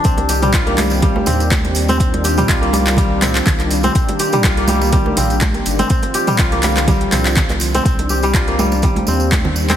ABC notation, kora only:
X:1
M:4/4
L:1/16
Q:"Swing 16ths" 1/4=123
K:Cm
V:1 name="Kora"
C z G G, F B, G, z G, z C z4 C | C z G G, F B, G, z G, z C z4 C | C z G G, F B, G, z G, z C z4 C | C z G G, F B, G, z G, z C z4 C |
C z G G, F B, G, z G, z C z4 C |]